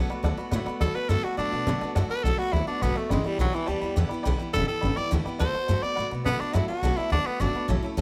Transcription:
Already playing: B3
0.09 A3 B3 F#4 D5 F#5 B5, muted upright bass stroke
0.23 D2 F#3 A3 B3 F#4 D5 F#5 A5
0.37 A3 B3 F#4 D5 F#5 B5
0.51 A2 D3 F#3 A3 B3 F#4 D5 F#5 B5
0.66 A3 B3 F#4 D5 F#5 B5, muted upright bass stroke
0.80 D2 D3 F#3 A3 B3 F#4 A4 D5 F#5 B5
0.94 A3 B3 F#4 B4 D5 F#5 A5, muted upright bass stroke
1.09 F#2 D3 F#3 A3 B3 F#4 A4 D5 F#5 B5
1.23 A3 B3 F#4 D5 F#5 A5, muted upright bass stroke
1.37 A2 F#3 A3 B3 D4 F#4 D5 F#5 A5
1.52 B2 A3 B3 F#4 D5 F#5 A5
1.67 B2 D3 F#3 A3 B3 F#4 D5 F#5 A5
1.81 A3 B3 F#4 D5 F#5 A5, muted upright bass stroke
1.95 F#2 D3 F#3 A3 B3 F#4 D5 F#5 A5
2.09 B3 F#4 B4 D5 F#5 A5
2.13 A3
2.24 B1 D3 F#3 A3 B3 F#4 A4 D5 F#5 A5
2.37 B3 F#4 D5 F#5 B5, muted upright bass stroke
2.42 A3
2.52 D2 F#3 A3 B3 E4 D5 F#5 B5
2.56 F#4
2.66 B3 D4 F#4 D5 F#5 A5, muted upright bass stroke
2.71 A3
2.81 A1 D3 F#3 A3 B3 F#4 D5 F#5 A5
2.95 A3 B3 F#4 D5 F#5 A5, muted upright bass stroke
2.99 A3
3.10 G1 G2 D3 E3 G3 G#3 B3 E4 D5 G5 B5
3.24 E3 G3 B3 E4 D5 G5 B5, muted upright bass stroke
3.38 B1 G2 D3 E3 F#3 G3 B3 E4 D5 G5 B5
3.52 E3 G3 B3 E4 D5 G5 A5
3.56 E3
3.66 D2 E3 G3 B3 D5 G5 A5
3.71 E4
3.81 E2 G3 B3 E4 D5 G5 B5
3.85 E3
3.96 E2 G2 D3 E3 G3 B3 E4 D5 G5 D6
4.09 B3 E4 D5 G5 B5, muted upright bass stroke
4.13 E3 G3
4.23 B1 G2 D3 E3 G3 D5 G5 B5
4.27 B3 E4
4.37 B3 E4 D5 G5 B5
4.41 E3 G3
4.53 E1 G2 D3 E3 G3 B3 E4 A4 D5 G5 B5
4.66 G3 B3 E4 A4 D5 G5 A5
4.71 E3
4.81 G1 E3 G3 D5 G5 B5
4.85 B3 E4
4.95 G3 B3 E4 D5 G5, muted upright bass stroke
5.00 E3
5.10 D2 G2 D3 E3 G3 B3 E4 D5 G5 C#6
5.25 G3 B3 E4 D5 G5 B5, muted upright bass stroke
5.29 E3
5.39 D2 D3 F#3 A3 B3 F#4 C5 D5 F#5 A5
5.54 A3 B3 F#4 D5 F#5 A5, muted upright bass stroke
5.67 F#2 D3 F#3 A3 B3 F#4 D5 F#5 A5
5.82 A3 B3 F#4 D5 F#5 B5, muted upright bass stroke
5.96 A2 F#3 A3 B3 D5 F#5 B5
6.00 F#4
6.11 B2 A3 B3 F#4 D5 F#5 B5
6.25 B2 D3 F#3 A3 B3 F#4 D5 F#5 A5
6.39 A3 B3 D4 F#4 D5 F#5 B5, muted upright bass stroke
6.53 F#2 D3 F#3 A3 B3 E4 F#4 D5 F#5 A5
6.68 A3 B3 F#4 D5 F#5 A5, muted upright bass stroke
6.82 B1 D3 F#3 A3 B3 F#4 D5 F#5 A5
6.97 A3 B3 E4 F#4 D5 F#5 A5
7.10 D2 F#3 A3 B3 D4 F#4 D5 F#5 A5
7.24 A3 B3 F#4 D5 A5, muted upright bass stroke
7.40 G1 D3 F#3 A3 B3 D4 F#4 D5 F#5 A5
7.53 A3 B3 F#4 D5 F#5 B5, muted upright bass stroke
7.68 A1 A2 F#3 A3 C#4 E4 C#5 E5 A5
7.83 A3 C#4 E4 C#5 E5 A5, muted upright bass stroke
7.97 C#2 A2 F#3 A3 C#5 A5

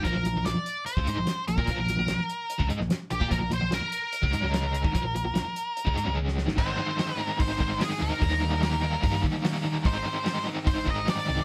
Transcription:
0.04 A#1 A#2 F3 A#4, kick, closed hi-hat
0.16 A#1 A#2 F3
0.25 A#1 A#2 F3, closed hi-hat
0.35 A#1 A#2 F3
0.45 A#1 A#2 F3 D5, snare, closed hi-hat
0.58 muted overdriven electric guitar stroke
0.66 closed hi-hat
0.86 C5, closed hi-hat
0.97 C#2 C#3 G#3, kick
1.07 G#2 G#3 D#4, closed hi-hat
1.17 A#1 A#2 F3
1.27 muted overdriven electric guitar stroke, snare, closed hi-hat
1.48 A#1 A#2 F3 A#4, closed hi-hat
1.58 A#2 A#3 F4, kick
1.67 A#1 A#2 F3, kick, closed hi-hat
1.78 A#1 A#2 F3
1.88 A#1 A#2 F3, closed hi-hat
1.98 A#1 A#2 F3
2.08 A#1 A#2 F3, snare, closed hi-hat
2.19 muted fingered electric bass stroke, muted overdriven electric guitar stroke
2.29 closed hi-hat
2.50 closed hi-hat
2.59 C#2 C#3 G#3, kick
2.69 G#2 G#3 D#4, closed hi-hat
2.80 A#1 A#2 F3, snare
2.90 muted overdriven electric guitar stroke, snare, closed hi-hat
3.10 A#1 A#2 F3 G4, closed hi-hat
3.21 A#2 A#3 F4, kick
3.30 A#1 A#2 F3 A#4, kick, closed hi-hat
3.41 A#1 A#2 F3
3.50 A#1 A#2 F3 C5, closed hi-hat
3.61 A#1 A#2 F3
3.71 A#1 A#2 F3 A#4, snare, closed hi-hat
3.82 muted overdriven electric guitar stroke, muted fingered electric bass stroke
3.92 closed hi-hat
4.13 closed hi-hat
4.23 C#2 C#3 G#3, kick
4.33 G#2 G#3 D#4, closed hi-hat
4.43 C#2 C#3 G#3 C#4
4.54 snare, closed hi-hat
4.74 closed hi-hat
4.84 G#1 G#2 D#3, kick
4.94 A#1 A#2 F3, kick, closed hi-hat
5.04 A#1 A#2 F3
5.15 A#1 A#2 F3, closed hi-hat
5.25 A#1 A#2 F3
5.34 A#1 A#2 F3, snare, closed hi-hat
5.45 muted overdriven electric guitar stroke
5.56 closed hi-hat
5.77 closed hi-hat
5.85 C#2 C#3 G#3, kick
5.95 G#2 G#3 D#4, closed hi-hat
6.05 C#2 C#3 G#3 C#4
6.17 high tom
6.28 snare
6.38 snare
6.47 G#1 G#2 D#3, snare
6.57 G#1 G#2 D#3 G#3 C4 D#4 C5, kick, crash
6.78 G#2 D#3 G#3 C4 D#4
6.98 G#2 D#3 G#3 C4 D#4, snare, open hi-hat
7.18 G#2 D#3 G#3 C4 D#4 A#4
7.39 G#1 G#2 D#3 G#3 C4 D#4 C5, kick, open hi-hat
7.60 G#1 G#2 D#3 G#3 C4 D#4, kick
7.81 G#2 D#3 G#3 C4 D#4 G#4, snare, open hi-hat
8.01 D2 G#2 D#3 G#3 C4 D#4 A#4
8.22 D#2 D#3 G3 A#3 D#4, kick, open hi-hat
8.44 D#3 G3 A#3 D#4
8.63 D#3 G3 A#3 D#4, snare, open hi-hat
8.83 D#3 G3 A#3 D#4
9.03 G2 D#3 G3 A#3 D#4, kick, open hi-hat
9.24 D#3 G3 A#3 D#4, kick
9.44 D#3 G3 A#3 D#4, snare, open hi-hat
9.56 snare
9.64 D#3 G3 A#3 D#4
9.85 G#1 G#2 D#3 G#3 C4 D#4 C5, kick, open hi-hat
10.06 G#2 D#3 G#3 C4 D#4
10.25 G#2 D#3 G#3 C4 D#4, snare, open hi-hat
10.47 G#2 D#3 G#3 C4 D#4
10.66 G#1 G#2 D#3 G#3 C4 D#4 C5, kick, open hi-hat
10.87 G#1 G#2 D#3 G#3 C4 D#4 D#5, kick
11.07 G#2 D#3 G#3 C4 D#4 D5, snare, open hi-hat
11.28 C2 G#2 D#3 G#3 C4 D#4

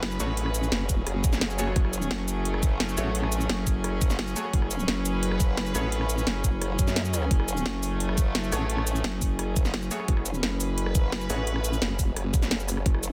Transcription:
Already playing: F#1 F#3 C#4 G#4 B4
0.03 snare, closed hi-hat
0.11 shaker
0.20 A1 A3 F#4 G#4 C#5, cross-stick, closed hi-hat, shaker
0.37 closed hi-hat
0.46 cross-stick
0.55 closed hi-hat, shaker
0.63 shaker
0.72 F#1, snare, closed hi-hat
0.89 kick, closed hi-hat, shaker
1.07 F#1, cross-stick, closed hi-hat
1.24 kick, closed hi-hat, shaker
1.33 snare, shaker
1.41 snare, closed hi-hat
1.50 shaker
1.59 A3 F#4 G#4 C#5, cross-stick, closed hi-hat, shaker
1.67 cross-stick
1.76 F#1 A3, kick, closed hi-hat
1.85 cross-stick
1.93 closed hi-hat, shaker
2.02 shaker
2.11 F#1, snare, closed hi-hat
2.28 closed hi-hat, shaker
2.45 closed hi-hat
2.54 cross-stick
2.63 kick, closed hi-hat, shaker
2.80 snare, closed hi-hat
2.89 shaker
2.97 A1 A3 F#4 G#4 C#5, cross-stick, closed hi-hat, shaker
3.15 closed hi-hat
3.23 cross-stick
3.32 closed hi-hat, shaker
3.41 shaker
3.49 F#1, snare, closed hi-hat
3.67 kick, closed hi-hat, shaker
3.84 cross-stick, closed hi-hat
4.01 kick, closed hi-hat, shaker
4.10 snare, shaker
4.19 snare, closed hi-hat
4.27 shaker
4.36 A3 F#4 G#4 C#5, cross-stick, closed hi-hat, shaker
4.45 cross-stick
4.53 F#1 B4, kick, closed hi-hat
4.62 cross-stick
4.71 closed hi-hat, shaker
4.79 shaker
4.88 F#1, snare, closed hi-hat
5.05 closed hi-hat, shaker
5.23 closed hi-hat
5.31 cross-stick
5.40 kick, closed hi-hat, shaker
5.57 snare, closed hi-hat
5.66 shaker
5.75 A1 A3 F#4 G#4 C#5, cross-stick, closed hi-hat, shaker
5.92 closed hi-hat
6.01 cross-stick
6.10 closed hi-hat, shaker
6.18 shaker
6.27 F#1, snare, closed hi-hat
6.44 kick, closed hi-hat, shaker
6.62 cross-stick, closed hi-hat
6.79 F#2, kick, closed hi-hat, shaker
6.88 snare, shaker
6.96 snare, closed hi-hat
7.05 shaker
7.14 cross-stick, closed hi-hat, shaker
7.22 cross-stick
7.31 F#1 A3, kick, closed hi-hat
7.40 cross-stick
7.48 closed hi-hat, shaker
7.57 shaker
7.66 F#1, snare, closed hi-hat
7.83 open hi-hat, shaker
8.00 closed hi-hat
8.09 cross-stick
8.18 kick, closed hi-hat, shaker
8.35 snare, closed hi-hat
8.44 shaker
8.52 A1 A3 F#4 G#4 C#5, cross-stick, open hi-hat, shaker
8.70 closed hi-hat
8.78 cross-stick
8.87 closed hi-hat, shaker
8.96 shaker
9.04 F#1, snare, closed hi-hat
9.22 kick, open hi-hat, shaker
9.39 cross-stick, closed hi-hat
9.56 kick, closed hi-hat, shaker
9.65 snare, shaker
9.74 snare, closed hi-hat
9.82 shaker
9.91 A3 F#4 G#4 C#5, cross-stick, open hi-hat, shaker
10.00 cross-stick
10.08 F#1 B4, kick, closed hi-hat
10.17 cross-stick
10.26 closed hi-hat, shaker
10.34 shaker
10.43 F#1, snare, closed hi-hat
10.60 open hi-hat, shaker
10.78 closed hi-hat
10.86 cross-stick
10.95 kick, closed hi-hat, shaker
11.12 snare, closed hi-hat
11.21 shaker
11.30 A1 A3 F#4 G#4 C#5, cross-stick, open hi-hat, shaker
11.47 closed hi-hat
11.56 cross-stick
11.64 closed hi-hat, shaker
11.73 shaker
11.82 F#1, snare, closed hi-hat
11.99 kick, open hi-hat, shaker
12.16 F#1, cross-stick, closed hi-hat
12.34 kick, closed hi-hat, shaker
12.42 snare, shaker
12.51 snare, closed hi-hat
12.60 shaker
12.68 cross-stick, open hi-hat, shaker
12.77 cross-stick
12.86 F#1 A3, kick, closed hi-hat
12.95 cross-stick
13.03 closed hi-hat, shaker

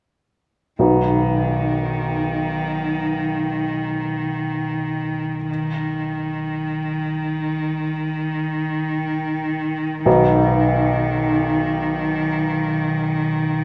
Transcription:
0.79 B1 D#3 D#4 F#4 B4
5.50 D#3
10.06 B1 D#3 D#4 F#4 B4

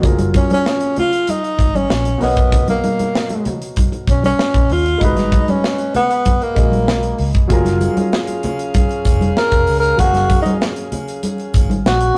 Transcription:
0.00 F#1 F#3 F4 G#4, kick, closed hi-hat, low conga
0.06 A#4
0.18 closed hi-hat, muted conga, high conga
0.34 C#4, kick, closed hi-hat, high conga
0.50 C#4, closed hi-hat, high conga
0.66 snare, muted conga
0.80 closed hi-hat
0.96 F4, closed hi-hat, low conga
1.13 closed hi-hat
1.27 D#4, closed hi-hat, muted conga, high conga
1.44 closed hi-hat
1.59 G#1, kick, closed hi-hat
1.75 C#4, closed hi-hat, high conga
1.90 A#1, snare, muted conga
2.05 closed hi-hat, muted conga
2.18 B1 B2 D#4 A#4, open hi-hat
2.22 B3 C#5, snare
2.37 kick, closed hi-hat
2.52 kick, closed hi-hat, muted conga, low conga
2.68 A#3, closed hi-hat, high conga
2.84 closed hi-hat, high conga
2.99 closed hi-hat, high conga
3.15 snare, muted conga
3.29 closed hi-hat, muted conga
3.45 closed hi-hat, low conga
3.62 closed hi-hat
3.76 kick, closed hi-hat, muted conga, high conga
3.92 closed hi-hat, muted conga
4.07 B1 C#4, kick, closed hi-hat
4.23 C#4, closed hi-hat, high conga
4.39 snare, muted conga
4.54 A#1, kick, closed hi-hat, muted conga
4.70 D#2 F4, open hi-hat
4.86 closed hi-hat
4.98 G#1 G#3 D#4 F#4, kick, closed hi-hat, low conga
5.03 D#4 B4
5.16 snare, closed hi-hat, muted conga, high conga
5.32 kick, closed hi-hat, high conga
5.48 C#4, closed hi-hat, high conga
5.64 snare
5.78 closed hi-hat
5.94 B3, closed hi-hat, low conga
6.11 closed hi-hat
6.25 kick, closed hi-hat, muted conga, high conga
6.41 A#3, closed hi-hat, muted conga
6.55 A#1 G#3 D#4 F#4 G#4, kick, closed hi-hat
6.72 closed hi-hat, high conga
6.87 B1, snare, muted conga
7.03 closed hi-hat
7.18 C#2, open hi-hat
7.35 kick, closed hi-hat
7.48 F#1 F#3 C#4 F4 G#4 F5, kick, closed hi-hat, muted conga, low conga, muted triangle
7.53 A#4
7.65 snare, closed hi-hat, muted conga, high conga, muted triangle
7.81 closed hi-hat, high conga, triangle
7.97 closed hi-hat, high conga, muted triangle
8.13 snare, muted conga, muted triangle
8.27 closed hi-hat, muted conga, muted triangle
8.43 closed hi-hat, low conga, triangle
8.59 closed hi-hat, muted triangle
8.74 kick, closed hi-hat, muted conga, high conga, muted triangle
8.89 closed hi-hat, muted triangle
9.05 F1, kick, closed hi-hat, triangle
9.21 closed hi-hat, high conga, muted triangle
9.37 A#4, snare, muted conga, muted triangle
9.51 F1, kick, closed hi-hat, muted triangle
9.67 C#2, open hi-hat, triangle
9.80 A#4, closed hi-hat, muted triangle
9.97 F#1 F#3 F#4 F5, kick, closed hi-hat, low conga, muted triangle
10.01 G#4 A#4
10.13 snare, closed hi-hat, muted conga, high conga, muted triangle
10.30 kick, closed hi-hat, high conga, triangle
10.42 D#4, closed hi-hat, high conga, muted triangle
10.61 snare, muted conga, muted triangle
10.76 closed hi-hat, muted triangle
10.92 closed hi-hat, low conga, triangle
11.08 closed hi-hat, muted triangle
11.23 closed hi-hat, high conga, muted triangle
11.38 closed hi-hat, muted triangle
11.54 G#1, kick, closed hi-hat, triangle
11.70 closed hi-hat, high conga, muted triangle
11.86 A#1 F#4, snare, muted triangle
12.01 closed hi-hat, muted triangle
12.14 B2

